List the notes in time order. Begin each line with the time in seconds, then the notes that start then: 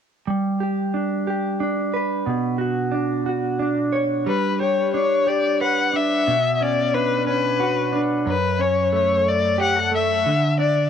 0.27 G3
0.60 G4
0.94 D4
1.27 G4
1.60 D4
1.94 B4
2.26 B2
2.58 F#4
2.92 D4
3.26 F#4
3.59 D4
3.93 C#5
4.26 G3 B4
4.60 G4 C#5
4.94 D4 C#5
5.27 G4 D5
5.61 B4 F#5
5.93 D4 E5
6.27 B2
6.55 E5
6.61 C#4 D5
6.94 D4 B4
7.27 C#4 B4
7.60 F#4
7.92 D4
8.26 F#2 B4
8.59 C#4 C#5
8.93 A3 C#5
9.28 D5
9.58 G4 F#5
9.76 A4
9.91 A3 E5
10.26 D3
10.59 D4 D5